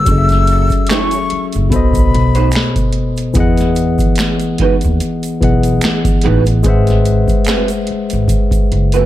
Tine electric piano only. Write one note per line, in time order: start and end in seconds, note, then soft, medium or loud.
0.05 1.67 F#3 medium
0.05 1.68 C#4 medium
0.05 1.69 G#4 medium
0.10 1.70 A4 medium
0.10 0.16 D#5 medium
0.18 1.74 E5 medium
1.69 3.31 B2 medium
1.69 3.32 B3 medium
1.69 3.33 A4 medium
1.74 3.34 C5 medium
1.74 3.35 D#5 medium
3.34 5.36 E3 medium
3.34 5.37 B3 medium
3.34 5.38 G#4 medium
3.39 5.39 D#5 medium
3.39 5.39 F#5 medium
5.41 6.64 E3 medium
5.41 6.65 B3 medium
5.41 6.63 G#4 soft
5.41 6.66 D#5 soft
5.41 6.66 F#5 medium
6.63 9.06 G#3 medium
6.63 9.06 G#4 medium
6.63 9.06 B4 medium
6.63 9.06 C5 medium
6.68 9.06 E5 medium
6.68 9.06 F#5 medium